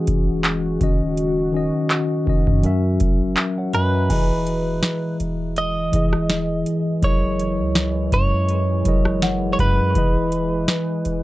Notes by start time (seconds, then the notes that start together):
Already playing: C#3 E3 G#3 C#4 F#4 G#4
0.07 E1, kick, closed hi-hat
0.44 clap, closed hi-hat
0.80 D#1 D#3 C#4 F#4 D#5, kick, closed hi-hat
1.17 closed hi-hat
1.53 D#3 C#4 F#4 D#5
1.90 clap, closed hi-hat
2.26 D#1 D#3 C#4 F#4 D#5, kick
2.47 F#2, kick
2.62 A#2 E3 F#3 C#4 A#4 E5, closed hi-hat
3.00 F#1, kick, closed hi-hat
3.37 A#4 E5, clap, closed hi-hat
3.58 C#5 F#5
3.73 F#2 B4 D#5 G#5, closed hi-hat
3.94 E5 A#5
4.09 E1 E3 G#3 E4 G#4 D#5 G#5, kick, closed hi-hat, crash
4.47 closed hi-hat
4.83 snare, closed hi-hat
5.20 E1, closed hi-hat
5.56 D#5, closed hi-hat
5.92 E1 E3 E4 G#4 D#5, kick, closed hi-hat
6.13 cross-stick
6.30 snare, closed hi-hat
6.66 closed hi-hat
7.02 F#1 A#2 F#3 E4 G#4 A#4 C#5 D#5, kick, closed hi-hat
7.39 closed hi-hat
7.59 C#2
7.75 snare, closed hi-hat
8.12 F#2 C#5, kick, closed hi-hat
8.49 closed hi-hat
8.85 F#1 F#3 E4 G#4 A#4 D#5, kick, closed hi-hat
9.05 cross-stick
9.22 F#5, snare, closed hi-hat
9.53 C#5
9.59 F#2 B4, kick, closed hi-hat
9.94 E1 E3 E4 G#4, kick, closed hi-hat
9.98 D#5
10.32 closed hi-hat
10.68 snare, closed hi-hat
11.05 E1, closed hi-hat